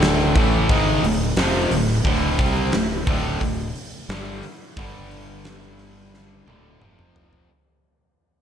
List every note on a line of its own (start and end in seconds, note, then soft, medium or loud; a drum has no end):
0.00 0.32 D1 loud
0.00 0.35 D2 loud
0.00 0.35 A2 loud
0.00 0.36 D3 loud
0.00 snare loud
0.00 open hi-hat medium
0.35 0.67 A1 loud
0.35 0.69 A2 loud
0.35 0.69 E3 medium
0.35 0.70 A3 loud
0.35 kick loud
0.35 open hi-hat medium
0.69 1.01 G#1 medium
0.69 1.03 G#2 medium
0.69 1.03 D#3 medium
0.69 1.03 G#3 loud
0.69 kick loud
0.69 open hi-hat medium
1.02 1.34 D1 medium
1.02 1.31 D2 medium
1.02 1.31 A2 medium
1.02 open hi-hat medium
1.36 1.69 F1 loud
1.36 1.70 F2 loud
1.36 1.71 C3 loud
1.36 1.71 F3 loud
1.36 snare loud
1.36 open hi-hat loud
1.71 2.03 D1 medium
1.71 1.99 D2 medium
1.71 1.99 A2 medium
1.71 open hi-hat medium
2.04 2.37 D1 loud
2.04 2.38 D2 medium
2.04 2.38 A2 loud
2.04 2.39 D3 loud
2.04 kick loud
2.04 open hi-hat medium
2.39 2.71 C2 medium
2.39 2.72 C3 loud
2.39 2.72 G3 loud
2.39 2.73 C4 loud
2.39 kick loud
2.39 open hi-hat medium
2.72 3.05 D1 medium
2.72 3.01 D2 medium
2.72 3.01 A2 medium
2.72 snare loud
2.72 open hi-hat medium
3.07 3.39 D1 loud
3.07 3.40 D2 loud
3.07 3.41 A2 loud
3.07 3.41 D3 loud
3.07 kick loud
3.07 open hi-hat medium
3.41 3.73 D1 medium
3.41 3.69 D2 medium
3.41 3.69 A2 medium
3.41 kick medium
3.41 open hi-hat medium
3.76 open hi-hat medium
4.09 4.41 G1 loud
4.09 4.43 G2 loud
4.09 4.43 D3 loud
4.09 4.43 G3 loud
4.09 snare loud
4.09 open hi-hat medium
4.43 open hi-hat medium
4.77 6.43 G1 loud
4.77 6.47 G2 medium
4.77 6.47 D3 loud
4.77 6.47 G3 loud
4.77 kick loud
4.77 open hi-hat medium
5.11 open hi-hat medium
5.45 snare loud
5.45 open hi-hat medium
5.79 open hi-hat medium
6.14 snare medium
6.47 6.79 D1 medium
6.47 6.80 D2 loud
6.47 6.81 A2 medium
6.47 6.81 D3 loud
6.47 high tom medium
6.81 7.45 F1 medium
6.81 7.49 F2 medium
6.81 7.49 C3 medium
6.81 7.49 F3 loud
6.81 mid tom loud
6.99 mid tom medium
7.16 floor tom loud
7.33 floor tom medium